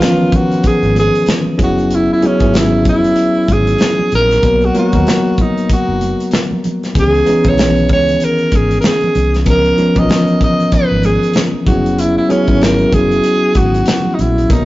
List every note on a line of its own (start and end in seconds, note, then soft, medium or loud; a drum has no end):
0.00 0.89 D#3 medium
0.00 1.60 E3 soft
0.00 1.61 F3 medium
0.00 1.58 B3 medium
0.00 1.58 C#4 medium
0.00 1.61 D#4 medium
0.00 0.37 F4 medium
0.00 1.60 A#4 medium
0.00 0.86 B4 medium
0.00 snare loud
0.00 closed hi-hat medium
0.00 high conga medium
0.32 0.69 F#4 medium
0.32 kick medium
0.32 closed hi-hat medium
0.32 muted conga soft
0.32 low conga medium
0.52 closed hi-hat soft
0.63 0.97 G#4 medium
0.63 muted fingered electric bass stroke soft
0.63 kick medium
0.63 closed hi-hat medium
0.63 muted conga soft
0.82 1.07 G#1 medium
0.82 closed hi-hat soft
0.96 1.32 G#4 medium
0.96 closed hi-hat medium
0.96 muted conga soft
0.96 high conga medium
1.15 closed hi-hat medium
1.26 snare loud
1.26 closed hi-hat medium
1.26 muted conga soft
1.26 high conga medium
1.45 low conga medium
1.58 2.09 F#1 medium
1.58 2.11 F#3 medium
1.58 2.11 B3 medium
1.58 2.11 C#4 medium
1.58 2.11 E4 medium
1.58 2.11 G#4 medium
1.58 kick medium
1.58 closed hi-hat medium
1.58 low conga medium
1.64 1.96 F#4 medium
1.78 closed hi-hat soft
1.91 closed hi-hat medium
1.91 muted conga soft
1.95 2.11 E4 medium
2.13 2.28 E4 medium
2.22 2.36 F#3 medium
2.22 2.36 B3 medium
2.22 2.37 C#4 medium
2.22 2.37 E4 medium
2.22 2.37 G#4 medium
2.22 closed hi-hat medium
2.22 muted conga soft
2.22 high conga medium
2.26 2.59 C#4 medium
2.39 2.85 G#1 medium
2.39 3.39 F#3 medium
2.39 3.39 B3 medium
2.39 3.39 C#4 medium
2.39 3.39 E4 medium
2.39 3.39 G#4 medium
2.39 kick medium
2.39 closed hi-hat soft
2.54 2.87 E4 medium
2.54 snare medium
2.54 closed hi-hat medium
2.54 muted conga soft
2.54 high conga medium
2.85 3.10 F#1 medium
2.85 kick medium
2.85 closed hi-hat medium
2.85 muted conga soft
2.85 low conga medium
2.89 3.54 E4 medium
3.04 closed hi-hat soft
3.16 closed hi-hat medium
3.16 muted conga soft
3.48 3.73 G#1 medium
3.48 kick medium
3.48 closed hi-hat medium
3.48 high conga medium
3.52 4.14 G#4 medium
3.67 closed hi-hat medium
3.78 snare medium
3.78 closed hi-hat medium
3.78 muted conga soft
3.78 high conga medium
3.99 low conga medium
4.12 4.37 A#1 medium
4.12 4.67 A#4 loud
4.12 closed hi-hat medium
4.12 low conga medium
4.31 snare soft
4.31 closed hi-hat soft
4.43 4.68 B1 medium
4.43 4.69 F#3 medium
4.43 4.69 A#3 medium
4.43 4.69 B3 medium
4.43 4.69 D#4 medium
4.43 4.69 A#4 medium
4.43 kick loud
4.43 closed hi-hat medium
4.62 4.77 F#4 medium
4.62 closed hi-hat soft
4.74 4.89 F#3 medium
4.74 4.89 A#3 medium
4.74 4.89 B3 medium
4.74 4.89 D#4 medium
4.74 4.89 A#4 medium
4.74 closed hi-hat medium
4.74 high conga medium
4.78 5.43 F#4 medium
4.93 5.03 D#2 medium
4.93 5.91 F#3 medium
4.93 5.91 A#3 medium
4.93 5.91 B3 medium
4.93 5.92 D#4 medium
4.93 5.92 A#4 medium
4.93 kick medium
4.93 closed hi-hat soft
5.07 snare medium
5.07 closed hi-hat medium
5.07 high conga medium
5.38 5.71 D#4 medium
5.38 kick medium
5.38 closed hi-hat medium
5.38 muted conga soft
5.38 low conga medium
5.58 closed hi-hat soft
5.69 6.30 F#4 medium
5.69 muted fingered electric bass stroke soft
5.69 kick medium
5.69 closed hi-hat medium
5.88 6.13 F#1 medium
6.01 closed hi-hat medium
6.01 muted conga soft
6.01 high conga medium
6.20 closed hi-hat soft
6.31 snare medium
6.31 closed hi-hat medium
6.31 muted conga soft
6.31 high conga medium
6.51 high conga soft
6.51 low conga medium
6.64 closed hi-hat medium
6.64 muted conga soft
6.64 low conga medium
6.83 snare soft
6.83 closed hi-hat soft
6.95 7.20 C#2 medium
6.95 7.21 E3 medium
6.95 7.21 B3 medium
6.95 7.21 C#4 medium
6.95 7.21 D#4 medium
6.95 7.21 G#4 medium
6.95 kick medium
6.95 closed hi-hat medium
6.95 muted conga soft
6.99 7.50 G#4 loud
7.14 closed hi-hat soft
7.25 7.40 E3 medium
7.25 7.41 B3 medium
7.25 7.41 C#4 medium
7.25 7.41 D#4 medium
7.25 7.41 G#4 medium
7.25 closed hi-hat medium
7.25 muted conga soft
7.25 high conga medium
7.43 7.89 B1 medium
7.43 7.49 D#3 medium
7.43 8.43 B3 medium
7.43 8.43 C#4 medium
7.43 8.43 D#4 medium
7.43 8.43 G#4 medium
7.43 kick medium
7.43 closed hi-hat soft
7.49 8.46 E3 medium
7.49 7.92 C#5 medium
7.58 snare medium
7.58 closed hi-hat medium
7.58 high conga medium
7.76 closed hi-hat soft
7.89 8.14 C#2 medium
7.89 8.26 C#5 medium
7.89 kick medium
7.89 closed hi-hat medium
7.89 muted conga soft
7.89 low conga medium
8.09 closed hi-hat soft
8.20 closed hi-hat medium
8.20 muted conga soft
8.25 8.57 A#4 medium
8.39 closed hi-hat soft
8.52 8.77 G#1 medium
8.52 kick medium
8.52 closed hi-hat medium
8.52 high conga medium
8.56 8.80 G#4 medium
8.71 closed hi-hat medium
8.81 8.88 A#4 medium
8.81 snare medium
8.81 closed hi-hat medium
8.81 high conga medium
8.87 9.35 G#4 medium
9.01 closed hi-hat soft
9.01 low conga medium
9.15 9.46 C2 medium
9.15 closed hi-hat medium
9.15 low conga medium
9.34 snare soft
9.34 closed hi-hat soft
9.45 9.71 C#2 medium
9.45 9.72 F3 medium
9.45 9.72 B3 medium
9.45 9.72 C#4 medium
9.45 9.72 D#4 medium
9.45 9.73 A#4 medium
9.45 kick loud
9.45 closed hi-hat medium
9.45 muted conga soft
9.50 10.00 A#4 loud
9.65 closed hi-hat soft
9.77 9.92 F3 medium
9.77 9.92 B3 medium
9.77 9.92 C#4 medium
9.77 9.93 D#4 medium
9.77 9.93 A#4 medium
9.77 closed hi-hat medium
9.77 muted conga soft
9.77 high conga medium
9.95 10.07 B1 medium
9.95 10.01 E3 soft
9.95 10.94 B3 medium
9.95 10.94 C#4 medium
9.95 10.95 D#4 medium
9.95 10.95 A#4 medium
9.95 10.43 D#5 loud
9.95 kick medium
9.95 closed hi-hat soft
10.01 10.97 F3 medium
10.09 snare loud
10.09 closed hi-hat medium
10.09 muted conga soft
10.09 high conga medium
10.27 closed hi-hat soft
10.41 10.76 D#5 medium
10.41 kick medium
10.41 closed hi-hat medium
10.41 muted conga soft
10.41 low conga medium
10.60 closed hi-hat soft
10.72 11.07 B4 medium
10.72 muted fingered electric bass stroke soft
10.72 kick medium
10.72 closed hi-hat medium
10.91 11.16 G#1 medium
11.03 11.42 G#4 medium
11.03 closed hi-hat medium
11.03 high conga medium
11.23 closed hi-hat medium
11.34 snare medium
11.34 closed hi-hat medium
11.34 high conga medium
11.53 low conga medium
11.66 12.16 F#1 medium
11.66 12.19 F#3 medium
11.66 11.74 A#3 medium
11.66 12.19 C#4 medium
11.66 12.19 E4 medium
11.66 12.01 F#4 medium
11.66 12.19 G#4 medium
11.66 kick loud
11.66 closed hi-hat medium
11.66 muted conga soft
11.66 low conga medium
11.73 12.22 B3 medium
11.86 closed hi-hat soft
11.99 12.17 E4 medium
11.99 closed hi-hat medium
12.17 12.33 E4 medium
12.29 12.44 F#3 medium
12.29 12.44 B3 medium
12.29 12.44 C#4 medium
12.29 12.65 C#4 medium
12.29 12.44 E4 medium
12.29 12.44 G#4 medium
12.29 closed hi-hat medium
12.29 high conga medium
12.47 12.83 G#1 medium
12.47 13.46 F#3 medium
12.47 13.46 B3 medium
12.47 13.46 C#4 medium
12.47 13.46 E4 medium
12.47 13.47 F#4 medium
12.47 kick medium
12.47 closed hi-hat soft
12.61 12.95 A#4 medium
12.61 snare medium
12.61 closed hi-hat medium
12.61 muted conga soft
12.61 high conga medium
12.79 closed hi-hat soft
12.92 13.17 F#1 medium
12.92 13.59 G#4 loud
12.92 kick medium
12.92 closed hi-hat medium
12.92 low conga medium
13.12 closed hi-hat soft
13.24 closed hi-hat medium
13.24 muted conga soft
13.55 13.80 G#1 medium
13.55 14.16 F#4 medium
13.55 kick medium
13.55 closed hi-hat medium
13.55 high conga medium
13.74 closed hi-hat medium
13.86 snare loud
13.86 closed hi-hat medium
13.86 high conga medium
14.05 low conga medium
14.14 14.22 D#4 medium
14.19 14.43 A#1 medium
14.19 14.53 E4 medium
14.19 closed hi-hat medium
14.19 muted conga soft
14.19 low conga medium
14.38 closed hi-hat soft
14.49 14.65 B1 medium
14.49 14.65 F#3 medium
14.49 14.65 A#3 medium
14.49 14.65 B3 medium
14.49 14.65 D#4 medium
14.49 14.65 A#4 medium
14.49 kick loud
14.49 closed hi-hat medium